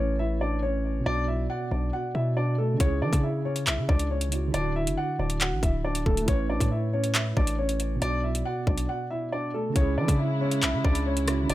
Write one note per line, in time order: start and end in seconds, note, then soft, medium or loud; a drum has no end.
0.00 1.02 A1 loud
0.00 1.00 A3 medium
0.00 0.15 C#4 medium
0.00 1.02 E4 medium
0.00 1.04 B4 medium
0.00 0.15 C#5 medium
0.00 1.06 C#5 medium
0.19 0.37 E4 medium
0.19 0.37 E5 medium
0.41 0.59 D4 medium
0.41 0.58 D5 medium
0.63 1.04 C#4 medium
0.63 1.03 C#5 medium
1.00 2.74 B2 medium
1.00 2.76 B3 medium
1.06 1.48 B1 loud
1.06 1.24 D4 medium
1.06 2.78 F#4 medium
1.06 1.24 D5 loud
1.12 2.80 D5 medium
1.28 1.46 E4 medium
1.28 1.45 E5 medium
1.50 1.68 F#4 medium
1.50 1.67 F#5 medium
1.71 1.92 B1 loud
1.71 1.89 D4 medium
1.71 1.89 D5 medium
1.93 2.11 F#4 medium
1.93 2.11 F#5 medium
2.15 2.77 B2 loud
2.15 2.33 E4 medium
2.15 2.32 E5 medium
2.37 2.55 D4 medium
2.37 2.54 D5 medium
2.58 2.76 A3 medium
2.58 2.76 A4 medium
2.74 4.26 C#3 medium
2.74 4.28 C#4 medium
2.80 3.03 C#2 loud
2.80 2.98 C#4 medium
2.80 4.30 E4 medium
2.80 2.97 C#5 loud
2.80 kick loud
2.80 closed hi-hat medium
2.86 4.32 G#4 medium
3.02 3.12 E3 loud
3.02 3.20 D4 medium
3.02 3.19 D5 medium
3.13 3.69 C#3 loud
3.13 kick medium
3.13 closed hi-hat medium
3.23 3.41 E4 medium
3.23 3.41 E5 medium
3.45 3.63 C#4 medium
3.45 3.63 C#5 medium
3.56 closed hi-hat medium
3.67 3.79 B1 loud
3.67 3.85 E4 medium
3.67 3.85 E5 medium
3.67 clap loud
3.67 closed hi-hat medium
3.78 3.88 C#3 loud
3.89 4.51 C#2 loud
3.89 4.07 D4 medium
3.89 4.06 D5 medium
3.89 kick loud
3.99 closed hi-hat medium
4.11 4.52 C#4 medium
4.11 4.51 C#5 medium
4.21 closed hi-hat medium
4.29 4.53 C#3 soft
4.29 4.54 C#4 soft
4.29 4.55 E4 soft
4.29 closed hi-hat medium
4.35 4.56 F#4 medium
4.48 6.21 D3 medium
4.48 6.23 D4 medium
4.54 4.88 D1 loud
4.54 4.72 D4 medium
4.54 6.25 E4 medium
4.54 4.71 D5 loud
4.54 closed hi-hat medium
4.60 6.27 F#4 medium
4.76 4.94 E4 medium
4.76 4.93 E5 medium
4.87 4.97 F#1 loud
4.87 closed hi-hat medium
4.97 5.15 F#4 medium
4.97 5.15 F#5 medium
5.19 5.53 D1 loud
5.19 5.37 D4 medium
5.19 5.37 D5 medium
5.30 closed hi-hat medium
5.41 5.59 F#4 medium
5.41 5.58 F#5 medium
5.41 clap loud
5.41 closed hi-hat medium
5.52 5.62 A1 loud
5.63 6.04 D1 loud
5.63 5.81 E4 medium
5.63 5.80 E5 medium
5.63 kick loud
5.63 closed hi-hat medium
5.85 6.02 D4 medium
5.85 6.02 D5 medium
5.95 closed hi-hat medium
6.06 6.27 D1 loud
6.06 6.24 A3 medium
6.06 6.24 A4 medium
6.06 kick medium
6.17 closed hi-hat medium
6.22 7.95 A3 medium
6.22 7.97 E4 medium
6.28 6.59 A1 loud
6.28 6.46 C#4 medium
6.28 7.99 B4 medium
6.28 6.45 C#5 loud
6.28 kick loud
6.28 closed hi-hat medium
6.34 8.01 C#5 medium
6.50 6.68 D4 medium
6.50 6.67 D5 medium
6.60 7.34 A2 loud
6.60 kick medium
6.60 closed hi-hat medium
6.71 6.89 E4 medium
6.71 6.89 E5 medium
6.93 7.11 C#4 medium
6.93 7.11 C#5 medium
7.04 closed hi-hat medium
7.15 7.33 E4 medium
7.15 7.32 E5 medium
7.15 clap loud
7.15 closed hi-hat medium
7.37 7.99 A1 loud
7.37 7.55 D4 medium
7.37 7.54 D5 medium
7.37 kick loud
7.47 closed hi-hat medium
7.58 8.00 C#4 medium
7.58 7.99 C#5 medium
7.69 closed hi-hat medium
7.80 closed hi-hat medium
7.96 9.69 B2 medium
7.96 9.71 B3 medium
8.02 8.44 B1 loud
8.02 8.20 D4 medium
8.02 9.73 F#4 medium
8.02 8.19 D5 loud
8.02 closed hi-hat medium
8.08 9.75 D5 medium
8.24 8.42 E4 medium
8.24 8.41 E5 medium
8.35 closed hi-hat medium
8.45 8.63 F#4 medium
8.45 8.63 F#5 medium
8.67 8.88 B1 loud
8.67 8.85 D4 medium
8.67 8.85 D5 medium
8.67 kick loud
8.78 closed hi-hat medium
8.89 9.07 F#4 medium
8.89 9.06 F#5 medium
9.10 9.28 E4 medium
9.10 9.28 E5 medium
9.32 9.50 D4 medium
9.32 9.50 D5 medium
9.54 9.72 A3 medium
9.54 9.72 A4 medium
9.70 11.22 C#3 medium
9.70 11.24 C#4 medium
9.76 9.99 C#2 loud
9.76 11.48 C#3 medium
9.76 11.48 G#3 medium
9.76 9.94 C#4 medium
9.76 11.48 E4 medium
9.76 11.26 E4 medium
9.76 9.93 C#5 loud
9.76 kick loud
9.76 closed hi-hat medium
9.82 11.28 G#4 medium
9.97 10.08 E3 loud
9.97 10.16 D4 medium
9.97 10.15 D5 medium
10.08 10.64 C#3 loud
10.08 kick medium
10.08 closed hi-hat medium
10.19 10.37 E4 medium
10.19 10.37 E5 medium
10.41 10.59 C#4 medium
10.41 10.58 C#5 medium
10.51 closed hi-hat medium
10.63 10.75 B1 loud
10.63 10.81 E4 medium
10.63 10.80 E5 medium
10.63 clap loud
10.63 closed hi-hat medium
10.74 10.84 C#3 loud
10.84 11.47 C#2 loud
10.84 11.02 D4 medium
10.84 11.02 D5 medium
10.84 kick loud
10.95 closed hi-hat medium
11.06 11.48 C#4 medium
11.06 11.47 C#5 medium
11.17 closed hi-hat medium
11.25 11.48 C#3 medium
11.25 11.49 C#4 soft
11.25 11.50 E4 soft
11.25 cross-stick loud
11.25 closed hi-hat medium
11.31 11.51 F#4 medium
11.44 11.54 D3 medium
11.44 11.54 D4 medium
11.50 11.54 D1 loud
11.50 11.54 E3 medium
11.50 11.54 F#3 medium
11.50 11.54 D4 medium
11.50 11.54 D5 loud
11.50 closed hi-hat medium